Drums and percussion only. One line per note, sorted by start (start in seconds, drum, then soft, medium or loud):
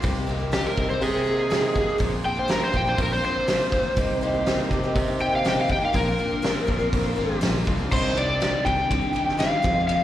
0.03 kick loud
0.03 open hi-hat medium
0.52 snare loud
0.52 open hi-hat medium
0.77 kick medium
1.01 open hi-hat medium
1.51 snare loud
1.51 open hi-hat medium
1.76 kick loud
2.00 kick loud
2.00 open hi-hat medium
2.49 snare loud
2.49 open hi-hat medium
2.74 kick medium
2.98 kick loud
2.98 open hi-hat medium
3.48 snare loud
3.48 open hi-hat medium
3.72 kick medium
3.97 kick loud
3.97 open hi-hat medium
4.46 snare loud
4.46 open hi-hat medium
4.71 kick medium
4.96 kick loud
4.96 open hi-hat medium
5.45 snare loud
5.45 open hi-hat medium
5.70 kick loud
5.94 kick loud
5.94 open hi-hat medium
6.44 snare loud
6.44 open hi-hat medium
6.68 kick medium
6.93 kick loud
6.93 open hi-hat medium
7.42 snare loud
7.42 open hi-hat medium
7.67 kick medium
7.92 kick loud
7.92 crash loud
8.17 ride medium
8.42 snare loud
8.42 ride loud
8.66 kick medium
8.66 ride medium
8.91 kick loud
8.91 ride loud
9.16 ride medium
9.29 snare soft
9.40 snare loud
9.40 ride medium
9.64 kick loud
9.64 ride medium
9.89 ride medium